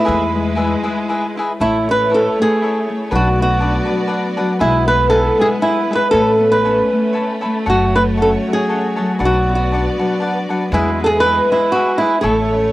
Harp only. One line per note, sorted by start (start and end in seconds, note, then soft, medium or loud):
0.00 0.14 A3 medium
0.00 1.42 D#4 medium
0.08 0.33 G#3 medium
0.34 0.57 G#3 medium
0.58 0.84 G#3 medium
0.85 1.65 G#3 medium
1.36 2.11 E4 medium
1.60 2.38 A3 medium
1.87 3.67 C#4 medium
2.11 2.62 E4 medium
2.39 2.89 A3 medium
2.62 5.11 E4 medium
2.90 4.67 A3 medium
3.12 3.88 F#3 medium
3.39 4.88 B3 medium
3.61 4.11 D4 medium
3.89 4.38 F#3 medium
4.11 6.70 D4 medium
4.39 4.67 F#3 medium
4.61 5.36 G#3 medium
4.88 6.39 B3 medium
5.12 5.61 E4 medium
5.38 5.88 G#3 medium
5.61 8.23 E4 medium
5.89 6.18 G#3 medium
6.12 6.92 A3 medium
6.39 9.49 B3 medium
6.64 7.16 C#4 medium
6.92 7.44 A3 medium
7.16 8.19 C#4 medium
7.45 7.96 A3 medium
7.69 8.46 F#3 medium
7.96 10.79 A3 medium
8.20 8.70 C#4 medium
8.47 8.97 F#3 medium
8.70 9.78 C#4 medium
8.98 9.21 F#3 medium
9.22 9.98 F#3 medium
9.49 11.00 B3 medium
9.72 10.22 D4 medium
9.99 10.48 F#3 medium
10.22 12.57 D4 medium
10.49 10.78 F#3 medium
10.73 11.49 G#3 medium
11.00 12.72 B3 medium
11.23 11.74 E4 medium
11.51 12.00 G#3 medium
11.74 12.72 E4 medium
12.01 12.29 G#3 medium
12.24 12.72 A3 medium
12.51 12.72 C#4 medium